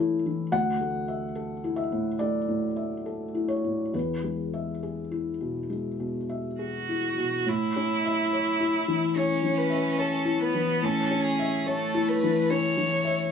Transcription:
Already playing: felt piano E3 A3 A4 C#5
0.00 felt piano E4
0.26 felt piano E3
0.52 felt piano D2 F#5
0.81 felt piano A3
1.08 felt piano E5
1.35 felt piano A4
1.64 felt piano E4
1.76 felt piano E5
1.92 felt piano A2
2.19 felt piano A3 D5
2.48 felt piano A2
2.76 felt piano E5
3.06 felt piano A4
3.35 felt piano E4
3.48 felt piano C#5
3.65 felt piano A2
3.93 felt piano E2 B4
4.23 felt piano G#3
4.54 felt piano E5
4.83 felt piano G#4
5.12 felt piano E4
5.41 felt piano B2
5.70 felt piano G#3
6.00 felt piano B2
6.29 felt piano E5
6.59 cello F#4, felt piano G#4
6.89 felt piano E4
7.18 felt piano B2
7.46 felt piano A2, cello E4
7.76 felt piano C#4
8.05 felt piano E5
8.33 felt piano C#5
8.60 felt piano E4
8.88 felt piano E3
9.16 felt piano C#4, cello C#4, violin C#5
9.43 felt piano E3
9.58 violin B4
9.70 felt piano E5
9.97 violin A4, felt piano C#5
10.25 felt piano E4
10.41 cello B3, violin B4
10.55 felt piano E3
10.82 felt piano A2, cello C#4, violin A4
11.11 felt piano C#4
11.25 violin G#4
11.39 felt piano E5
11.66 cello A3, violin A4, felt piano C#5
11.94 felt piano E4
12.08 violin B4
12.23 felt piano E3
12.50 felt piano C#4, violin C#5
12.77 felt piano E3
13.05 felt piano E5

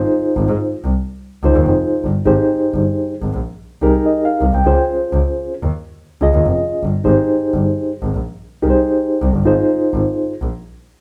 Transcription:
Already playing: reed electric piano D#4 F4 G#4 C5
0.37 double bass G#1
0.48 double bass G#2
0.85 double bass C2
1.43 double bass C#2, reed electric piano D#4 F4 G#4 C5
1.56 double bass D#2
1.67 double bass F1
2.05 double bass G1
2.25 double bass G#1, reed electric piano D#4 G4 G#4 C5
2.74 double bass G1
3.22 double bass G#1
3.34 double bass A#1
3.82 double bass C2, reed electric piano D#4 G4 G#4 A#4
4.06 reed electric piano D#5
4.25 reed electric piano F5
4.41 double bass C2
4.53 double bass C2, reed electric piano G5
4.65 double bass C#2, reed electric piano C#4 F4 G#4 C5
5.13 double bass C#2
5.62 double bass D#2
6.21 double bass C#2, reed electric piano C#4 F4 G#4 D#5
6.34 double bass D#2
6.46 double bass F1
6.83 double bass G1
7.04 double bass G#1, reed electric piano D#4 G4 G#4 C5
7.54 double bass G1
8.02 double bass G#1
8.15 double bass A#1
8.62 double bass C2, reed electric piano D#4 G4 G#4 A#4
8.70 reed electric piano C5
9.22 double bass C2
9.34 double bass G1
9.44 double bass G#1, reed electric piano D#4 F4 G#4 C5
9.94 double bass G#1
10.42 double bass A#1

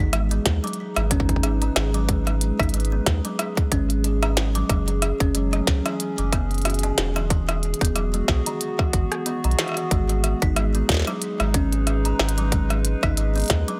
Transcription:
Already playing: ambient pad G#3 B3 D#4 F#4 G#4
0.00 sub bass G#1
0.13 kalimba G#3, cross-stick, closed hi-hat
0.31 kalimba B3, closed hi-hat
0.45 sub bass D#2, ambient pad B4, kick, snare, closed hi-hat
0.64 kalimba F#3, closed hi-hat
0.67 closed hi-hat
0.73 closed hi-hat
0.96 sub bass G#1, kalimba G#3, cross-stick, closed hi-hat
1.11 kalimba C#4, kick, closed hi-hat
1.20 kick
1.29 kick, closed hi-hat
1.36 kick
1.43 kalimba G#4, cross-stick, closed hi-hat
1.62 kalimba D#3, closed hi-hat
1.76 sub bass G#1, kalimba G#4, cross-stick, snare, closed hi-hat
1.94 kalimba F#3, closed hi-hat
2.09 kalimba G#3, kick, closed hi-hat
2.27 kalimba G#3, cross-stick, closed hi-hat
2.41 closed hi-hat
2.59 sub bass G#1, kalimba D#4, kick, cross-stick, closed hi-hat
2.63 closed hi-hat
2.69 closed hi-hat
2.74 kalimba G#3, closed hi-hat
2.80 closed hi-hat
2.85 closed hi-hat
2.92 kalimba B3
3.06 sub bass D#2, kick, cross-stick, snare, closed hi-hat
3.25 kalimba F#3, closed hi-hat
3.39 cross-stick, closed hi-hat
3.57 kalimba G#3, kick, closed hi-hat
3.72 sub bass G#1, kalimba C#4, kick, closed hi-hat
3.90 closed hi-hat
4.04 kalimba G#4, closed hi-hat
4.23 kalimba D#3, cross-stick, closed hi-hat
4.37 snare, closed hi-hat
4.55 kalimba F#3, closed hi-hat
4.69 sub bass F#1, kalimba F#3, ambient pad F#3, kick, cross-stick, closed hi-hat
4.88 kalimba F#3, ambient pad C#4, closed hi-hat
5.02 cross-stick, closed hi-hat
5.20 sub bass F#1, kalimba C#4, kick, closed hi-hat
5.35 kalimba G#3, closed hi-hat
5.53 kalimba A3, cross-stick, closed hi-hat
5.67 sub bass C#2, kick, snare, closed hi-hat
5.86 kalimba E3, cross-stick, closed hi-hat
6.00 closed hi-hat
6.18 sub bass F#1, kalimba F#3, closed hi-hat
6.33 kalimba B3, kick, cross-stick, closed hi-hat
6.51 closed hi-hat
6.54 closed hi-hat
6.58 closed hi-hat
6.62 kalimba F#4, cross-stick, closed hi-hat
6.65 closed hi-hat
6.70 closed hi-hat
6.74 closed hi-hat
6.79 closed hi-hat
6.83 kalimba C#3, closed hi-hat
6.98 sub bass E1, kalimba F#4, snare, closed hi-hat
7.16 kalimba E3, cross-stick, closed hi-hat
7.30 kalimba E3, kick, closed hi-hat
7.49 kalimba E3, cross-stick, closed hi-hat
7.58 ambient pad F#4
7.63 ambient pad B3, closed hi-hat
7.74 closed hi-hat
7.81 sub bass E1, kalimba B3, kick, closed hi-hat
7.85 closed hi-hat
7.96 kalimba F#3, cross-stick, closed hi-hat
8.14 kalimba G#3, closed hi-hat
8.28 sub bass B1, kick, cross-stick, snare
8.46 kalimba D#3, closed hi-hat
8.61 closed hi-hat
8.79 kalimba E3, kick, cross-stick
8.93 sub bass G#1, kalimba E3, kick, closed hi-hat
9.12 cross-stick, closed hi-hat
9.26 kalimba B3, closed hi-hat
9.44 sub bass B1, kalimba D#3, closed hi-hat
9.51 closed hi-hat
9.59 kalimba E3, cross-stick, snare, closed hi-hat
9.61 cross-stick
9.64 cross-stick
9.66 cross-stick, closed hi-hat
9.69 cross-stick
9.72 cross-stick
9.74 kalimba E3, cross-stick, closed hi-hat
9.91 sub bass G#1, ambient pad G#3, kalimba G#3, kick, closed hi-hat
10.09 kalimba G#3, ambient pad D#4, closed hi-hat
10.24 cross-stick, closed hi-hat
10.42 sub bass G#1, kalimba D#4, kick, closed hi-hat
10.56 kalimba G#3, cross-stick, closed hi-hat
10.75 kalimba B3, closed hi-hat
10.89 sub bass D#2, kick, snare, closed hi-hat
10.92 snare
10.94 snare
10.97 snare
10.99 snare
11.02 snare
11.05 kalimba F#3, cross-stick, snare, closed hi-hat
11.11 ambient pad B4
11.22 closed hi-hat
11.40 sub bass G#1, kalimba G#3, cross-stick, closed hi-hat
11.54 kalimba C#4, kick, closed hi-hat
11.72 kalimba G#4, closed hi-hat
11.87 cross-stick, closed hi-hat
12.05 kalimba D#3, closed hi-hat
12.19 sub bass G#1, kalimba G#4, cross-stick, snare
12.29 closed hi-hat
12.38 kalimba F#3, closed hi-hat
12.52 kalimba G#3, kick, closed hi-hat
12.70 kalimba G#3, cross-stick, closed hi-hat
12.85 closed hi-hat
13.03 sub bass G#1, kalimba D#4, kick, cross-stick, closed hi-hat
13.17 kalimba G#3, closed hi-hat
13.36 kalimba B3, closed hi-hat
13.38 closed hi-hat
13.40 closed hi-hat
13.42 closed hi-hat
13.44 closed hi-hat
13.46 closed hi-hat
13.48 sub bass D#2, kick, cross-stick, snare, closed hi-hat
13.50 closed hi-hat
13.68 kalimba F#3, closed hi-hat

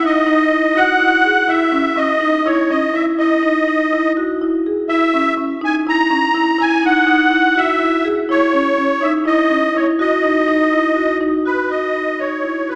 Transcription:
0.03 marimba D#4, accordion D#5
0.26 marimba D#4
0.51 marimba E4
0.75 marimba F#4, accordion F#5
1.00 marimba E4
1.25 marimba G#4
1.48 marimba E4, accordion E5
1.72 marimba C#4
1.96 marimba C#4, accordion D#5
2.21 marimba D#4
2.46 marimba E4, accordion C#5
2.70 marimba C#4, accordion D#5
2.94 marimba E4, accordion E5
3.19 marimba E4, accordion D#5
3.43 marimba D#4
3.68 marimba D#4
3.93 marimba E4
4.17 marimba F#4
4.41 marimba E4
4.66 marimba G#4
4.89 marimba E4, accordion E5
5.14 marimba C#4
5.37 marimba C#4
5.61 marimba D#4, accordion G#5
5.87 marimba E4, accordion A#5
6.10 marimba C#4
6.34 marimba E4
6.59 marimba E4, accordion G#5
6.83 marimba D#4, accordion F#5
7.07 marimba D#4
7.30 marimba E4
7.55 marimba F#4, accordion E5
7.80 marimba E4
8.05 marimba G#4
8.29 marimba E4, accordion C#5
8.53 marimba C#4
8.78 marimba C#4
9.01 marimba D#4, accordion E5
9.25 marimba E4, accordion D#5
9.50 marimba C#4
9.75 marimba E4, accordion C#5
9.99 marimba F#4, accordion D#5
10.23 marimba D#4
10.48 marimba D#4
10.73 marimba E4
10.96 marimba F#4
11.21 marimba D#4
11.45 marimba F#4, accordion B4
11.70 marimba F#4, accordion D#5
11.94 marimba D#4
12.19 marimba D#4, accordion C#5
12.42 marimba E4
12.68 marimba F#4, accordion B4

